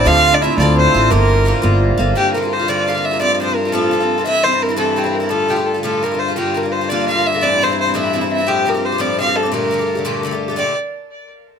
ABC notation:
X:1
M:6/8
L:1/16
Q:3/8=114
K:Gdor
V:1 name="Fiddle"
f3 d e2 d2 c4 | B8 z4 | G2 B2 c2 d2 f2 e2 | d3/2 d/2 c2 B2 A6 |
e2 c2 B2 A2 G2 B2 | A2 G2 A2 A2 B2 c2 | G2 B2 c2 d2 f2 e2 | d2 c2 c2 e4 e2 |
G2 B2 c2 d2 f2 A2 | B8 z4 | d2 z8 z2 |]
V:2 name="Hammered dulcimer"
F3 D E2 D2 C4 | B,8 z4 | z12 | z12 |
z12 | z12 | z12 | z12 |
z12 | z12 | z12 |]
V:3 name="Bouzouki"
[A,,D,CF]4 [A,,D,CF]2 [A,,D,CF]4 [D,CF]2 | [G,,D,B,F]4 [G,,D,B,F]2 [G,,D,B,F]4 [D,B,F]2 | [G,,D,B,F]2 [G,,D,B,F] [D,B,F]2 [D,B,F] [G,,D,B,F]2 [G,,D,B,F] [D,B,F]2 [D,B,F] | [A,,F,CF]2 [A,,F,CF] [F,CF]2 [F,CF] [A,,F,CF]2 [A,,F,CF] [F,CF]2 [F,CF] |
[G,,E,CE]2 [G,,E,CE] [E,CE]2 [E,CE] [G,,E,CE]2 [G,,E,CE] [E,CE]2 [E,CE] | [A,,D,A,F]2 [A,,D,A,F] [D,A,F]2 [D,A,F] [A,,D,A,F]2 [A,,D,A,F] [D,A,F]2 [D,A,F] | [G,,D,B,F]2 [G,,D,B,F] [D,B,F]2 [D,B,F] [G,,D,B,F]2 [G,,D,B,F] [D,B,F]2 [D,B,F] | [A,,E,CE]2 [A,,E,CE] [E,CE]2 [E,CE] [A,,E,CE]2 [A,,E,CE] [E,CE]2 [E,CE] |
[A,,F,CG]2 [A,,F,CG] [F,CG]2 [F,CG] [A,,F,CG]2 [A,,F,CG] [F,CG]2 [F,CG] | [B,,D,A,G]2 [B,,D,A,G] [D,A,G]2 [D,A,G] [B,,D,A,G]2 [B,,D,A,G] [D,A,G]2 [D,A,G] | [B,,D,A,G]2 z8 z2 |]
V:4 name="Harmonium" clef=bass
z12 | z12 | G,,12- | G,,12- |
G,,12- | G,,12 | G,,12- | G,,12- |
G,,12- | G,,12 | z12 |]
V:5 name="Upright bass" clef=bass
D,,6 D,,4 A,,,2 | G,,,6 G,,,4 G,,,2 | z12 | z12 |
z12 | z12 | z12 | z12 |
z12 | z12 | z12 |]